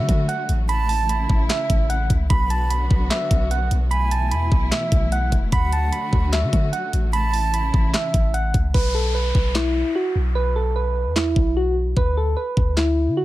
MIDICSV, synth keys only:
0, 0, Header, 1, 2, 480
1, 0, Start_track
1, 0, Key_signature, 2, "minor"
1, 0, Tempo, 402685
1, 824, Time_signature, 4, 2, 24, 8
1, 15790, End_track
2, 0, Start_track
2, 0, Title_t, "Synth keys"
2, 0, Program_c, 0, 88
2, 0, Note_on_c, 0, 76, 78
2, 314, Note_off_c, 0, 76, 0
2, 340, Note_on_c, 0, 78, 91
2, 568, Note_off_c, 0, 78, 0
2, 821, Note_on_c, 0, 83, 112
2, 1049, Note_off_c, 0, 83, 0
2, 1059, Note_on_c, 0, 81, 85
2, 1287, Note_off_c, 0, 81, 0
2, 1306, Note_on_c, 0, 83, 75
2, 1756, Note_off_c, 0, 83, 0
2, 1783, Note_on_c, 0, 76, 82
2, 2234, Note_off_c, 0, 76, 0
2, 2260, Note_on_c, 0, 78, 87
2, 2488, Note_off_c, 0, 78, 0
2, 2740, Note_on_c, 0, 83, 112
2, 2968, Note_off_c, 0, 83, 0
2, 2983, Note_on_c, 0, 81, 83
2, 3210, Note_off_c, 0, 81, 0
2, 3223, Note_on_c, 0, 83, 81
2, 3674, Note_off_c, 0, 83, 0
2, 3702, Note_on_c, 0, 76, 80
2, 4154, Note_off_c, 0, 76, 0
2, 4184, Note_on_c, 0, 78, 82
2, 4410, Note_off_c, 0, 78, 0
2, 4659, Note_on_c, 0, 83, 109
2, 4887, Note_off_c, 0, 83, 0
2, 4904, Note_on_c, 0, 81, 85
2, 5130, Note_off_c, 0, 81, 0
2, 5142, Note_on_c, 0, 83, 82
2, 5594, Note_off_c, 0, 83, 0
2, 5619, Note_on_c, 0, 76, 83
2, 6073, Note_off_c, 0, 76, 0
2, 6106, Note_on_c, 0, 78, 92
2, 6331, Note_off_c, 0, 78, 0
2, 6587, Note_on_c, 0, 83, 112
2, 6812, Note_off_c, 0, 83, 0
2, 6829, Note_on_c, 0, 81, 83
2, 7053, Note_off_c, 0, 81, 0
2, 7062, Note_on_c, 0, 83, 86
2, 7514, Note_off_c, 0, 83, 0
2, 7541, Note_on_c, 0, 76, 78
2, 7993, Note_off_c, 0, 76, 0
2, 8019, Note_on_c, 0, 78, 90
2, 8247, Note_off_c, 0, 78, 0
2, 8500, Note_on_c, 0, 83, 115
2, 8728, Note_off_c, 0, 83, 0
2, 8736, Note_on_c, 0, 81, 85
2, 8966, Note_off_c, 0, 81, 0
2, 8985, Note_on_c, 0, 83, 79
2, 9436, Note_off_c, 0, 83, 0
2, 9462, Note_on_c, 0, 76, 81
2, 9914, Note_off_c, 0, 76, 0
2, 9941, Note_on_c, 0, 78, 89
2, 10168, Note_off_c, 0, 78, 0
2, 10421, Note_on_c, 0, 71, 101
2, 10648, Note_off_c, 0, 71, 0
2, 10662, Note_on_c, 0, 69, 80
2, 10889, Note_off_c, 0, 69, 0
2, 10901, Note_on_c, 0, 71, 79
2, 11353, Note_off_c, 0, 71, 0
2, 11383, Note_on_c, 0, 64, 77
2, 11834, Note_off_c, 0, 64, 0
2, 11865, Note_on_c, 0, 66, 86
2, 12091, Note_off_c, 0, 66, 0
2, 12341, Note_on_c, 0, 71, 102
2, 12568, Note_off_c, 0, 71, 0
2, 12586, Note_on_c, 0, 69, 79
2, 12811, Note_off_c, 0, 69, 0
2, 12823, Note_on_c, 0, 71, 83
2, 13274, Note_off_c, 0, 71, 0
2, 13301, Note_on_c, 0, 64, 80
2, 13753, Note_off_c, 0, 64, 0
2, 13787, Note_on_c, 0, 66, 89
2, 14012, Note_off_c, 0, 66, 0
2, 14267, Note_on_c, 0, 71, 109
2, 14492, Note_off_c, 0, 71, 0
2, 14510, Note_on_c, 0, 69, 81
2, 14733, Note_off_c, 0, 69, 0
2, 14740, Note_on_c, 0, 71, 87
2, 15193, Note_off_c, 0, 71, 0
2, 15222, Note_on_c, 0, 64, 76
2, 15674, Note_off_c, 0, 64, 0
2, 15700, Note_on_c, 0, 66, 90
2, 15790, Note_off_c, 0, 66, 0
2, 15790, End_track
0, 0, End_of_file